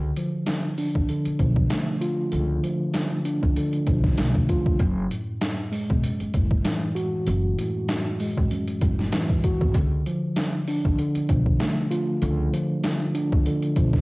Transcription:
Already playing: tine electric piano D3
0.17 tine electric piano F3, closed hi-hat
0.46 snare, closed hi-hat
0.78 tine electric piano D4, open hi-hat
0.95 upright bass A1, kick
1.09 tine electric piano D3, closed hi-hat
1.25 muted upright bass stroke, closed hi-hat
1.39 upright bass B1, tine electric piano F3, kick, closed hi-hat
1.56 kick
1.70 tine electric piano A3, snare, closed hi-hat
2.01 tine electric piano F4, closed hi-hat
2.32 upright bass C#2, tine electric piano D3, closed hi-hat
2.63 tine electric piano F3, closed hi-hat
2.94 snare, closed hi-hat
3.25 tine electric piano D4, closed hi-hat
3.43 upright bass C#2, kick
3.56 tine electric piano D3, closed hi-hat
3.73 closed hi-hat
3.86 upright bass B1, tine electric piano F3, kick, closed hi-hat
4.04 kick, snare
4.17 upright bass B1, tine electric piano A3, snare, closed hi-hat
4.35 kick
4.49 upright bass C#2, tine electric piano F4, kick, closed hi-hat
4.66 kick
4.79 upright bass F#1, tine electric piano F#2, kick, closed hi-hat
5.10 tine electric piano A2, closed hi-hat
5.41 snare, closed hi-hat
5.72 tine electric piano G#3, open hi-hat
5.90 upright bass E1, kick
6.03 tine electric piano F#2, closed hi-hat
6.20 muted upright bass stroke, closed hi-hat
6.34 upright bass F#1, tine electric piano A2, kick, closed hi-hat
6.51 kick
6.64 tine electric piano E3, snare, closed hi-hat
6.95 tine electric piano F#4, closed hi-hat
7.27 upright bass F#1, tine electric piano F#2, closed hi-hat
7.58 tine electric piano A2, closed hi-hat
7.89 snare, closed hi-hat
8.20 tine electric piano G#3, open hi-hat
8.37 upright bass A1, kick
8.51 tine electric piano F#2, closed hi-hat
8.68 closed hi-hat
8.81 upright bass F#1, tine electric piano A2, kick, closed hi-hat
8.99 snare
9.12 tine electric piano E3, snare, closed hi-hat
9.30 kick
9.44 tine electric piano F#4, kick, closed hi-hat
9.61 upright bass G#1, kick
9.74 upright bass C#2, tine electric piano D3, kick, closed hi-hat
10.06 tine electric piano F3, closed hi-hat
10.36 snare, closed hi-hat
10.68 tine electric piano D4, open hi-hat
10.85 upright bass A1, kick
10.99 tine electric piano D3, closed hi-hat
11.15 muted upright bass stroke, closed hi-hat
11.29 upright bass B1, tine electric piano F3, kick, closed hi-hat
11.46 kick
11.60 tine electric piano A3, snare, closed hi-hat
11.91 tine electric piano F4, closed hi-hat
12.22 upright bass C#2, tine electric piano D3, closed hi-hat
12.53 tine electric piano F3, closed hi-hat
12.83 snare, closed hi-hat
13.15 tine electric piano D4, closed hi-hat
13.32 upright bass C#2, kick
13.46 tine electric piano D3, closed hi-hat
13.63 closed hi-hat
13.76 upright bass B1, tine electric piano F3, kick, closed hi-hat
13.93 kick, snare

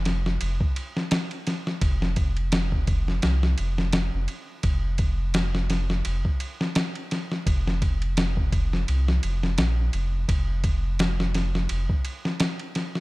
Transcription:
Already playing: sub bass F1
0.05 snare, ride
0.26 snare
0.41 sub bass F1, ride
0.61 kick
0.76 ride
0.97 snare
1.11 snare, ride
1.31 ride
1.47 snare, ride
1.67 snare
1.81 sub bass F1, kick, ride
2.02 snare
2.16 kick, ride
2.37 ride
2.52 snare, ride
2.72 kick
2.87 kick, ride
3.08 snare
3.22 sub bass C2, snare, ride
3.43 snare
3.58 sub bass F1, ride
3.78 snare
3.93 snare, ride
4.14 sub bass F1
4.28 ride
4.63 sub bass F1, kick, ride
4.98 kick, ride
5.34 snare, ride
5.55 snare
5.70 snare, ride
5.90 snare
6.05 sub bass F1, ride
6.25 kick
6.40 ride
6.61 snare
6.75 snare, ride
6.95 ride
7.11 snare, ride
7.32 snare
7.46 sub bass F1, kick, ride
7.67 snare
7.82 kick, ride
8.02 ride
8.17 snare, ride
8.37 kick
8.52 kick, ride
8.73 snare
8.88 sub bass C2, ride
9.08 snare
9.23 sub bass F1, ride
9.43 snare
9.58 sub bass A#1, snare, ride
9.93 sub bass F1, ride
10.29 sub bass F1, kick, ride
10.64 kick, ride
10.99 snare, ride
11.20 snare
11.35 snare, ride
11.55 snare
11.69 sub bass F1, ride
11.89 kick
12.05 ride
12.25 snare
12.40 snare, ride
12.59 ride
12.75 snare, ride
12.95 snare

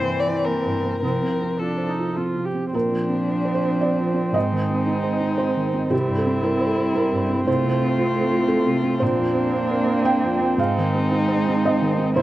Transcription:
Already playing: felt piano C2 G2 A#3 E4, cello E3, viola C4, violin C5
0.10 felt piano C5
0.20 violin D5
0.28 felt piano E4
0.45 felt piano A#3, violin A#4
0.65 felt piano G2
0.83 felt piano A#3
1.01 felt piano C2, cello F3, viola C4, violin A#4
1.22 felt piano C3
1.42 felt piano C4
1.59 viola D4, felt piano F4, violin A4
1.78 felt piano C5
1.89 viola D#4
1.98 felt piano F4
2.16 felt piano C4, viola F4
2.35 felt piano C3
2.45 viola G4
2.55 felt piano C4
2.73 felt piano A#2 A#4, cello F3, viola C4, violin D4
2.90 felt piano F3
3.09 felt piano C4
3.27 felt piano D4
3.45 felt piano C5
3.55 felt piano C5
3.63 felt piano D4
3.81 felt piano C4 D5
3.99 felt piano F3
4.14 felt piano C4
4.33 felt piano G#2 D#5, cello G#3, violin D#4
4.52 felt piano D#3
4.70 felt piano C4
4.87 felt piano D#4
5.03 felt piano C5
5.20 felt piano D#4
5.38 felt piano C4 C5
5.56 felt piano D#3
5.74 felt piano C4
5.90 felt piano C2 G4, cello G3, viola C4, violin E4
6.08 felt piano G2
6.17 felt piano A4
6.27 felt piano C4
6.43 felt piano E4 A#4
6.61 felt piano C5
6.67 felt piano A4
6.77 felt piano E4
6.94 felt piano C4 A#4
7.12 felt piano G2
7.29 felt piano C4
7.47 felt piano C2 C5, cello A3, violin F4
7.64 felt piano C3
7.81 felt piano C4
7.98 felt piano F4
8.16 felt piano A4
8.31 felt piano F4
8.48 felt piano C4 A4
8.66 felt piano C3
8.84 felt piano C4
9.00 felt piano A#1 C5, cello A#3, viola C4, violin D4
9.19 felt piano F2
9.35 felt piano C4
9.53 felt piano D4
9.69 felt piano A#4
9.87 felt piano D4
10.04 felt piano C4 G5
10.23 felt piano F2
10.42 felt piano C4
10.58 felt piano G#2 F5, cello G#3, violin D#4
10.78 felt piano D#3
10.95 felt piano C4
11.11 felt piano D#4
11.28 felt piano C5
11.48 felt piano D#4
11.65 felt piano C4 D#5
11.81 felt piano D#3
11.98 felt piano C4
12.16 felt piano C2 C5, cello G3, viola A#3, violin E4

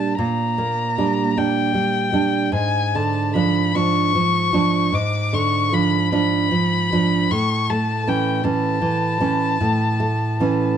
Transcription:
Already playing: nylon-string guitar A#2 G3 D4, violin A5
0.18 nylon-string guitar A#2, violin A#5
0.58 nylon-string guitar A#3
0.98 nylon-string guitar G3 D4
1.37 nylon-string guitar G3 D4, violin G5
1.74 nylon-string guitar G3
2.13 nylon-string guitar G3 D4
2.52 nylon-string guitar G#2, violin G#5
2.95 nylon-string guitar D3, violin A5
3.35 nylon-string guitar F3 D4, violin B5
3.75 nylon-string guitar F3 D4, violin C#6
4.15 nylon-string guitar F3
4.53 nylon-string guitar F3 D4
4.92 nylon-string guitar G#2, violin D6
5.33 nylon-string guitar D3, violin C#6
5.72 nylon-string guitar F3 D4, violin B5
6.12 nylon-string guitar F3 D4, violin B5
6.51 nylon-string guitar F3
6.92 nylon-string guitar F3 D4
7.31 nylon-string guitar A2, violin C#6
7.70 nylon-string guitar A3, violin A5
8.07 nylon-string guitar E3 C#4, violin G5
8.44 nylon-string guitar E3 C#4, violin A5
8.82 nylon-string guitar E3
9.20 nylon-string guitar E3 C#4
9.61 nylon-string guitar A2
10.00 nylon-string guitar A3
10.40 nylon-string guitar E3 C#4

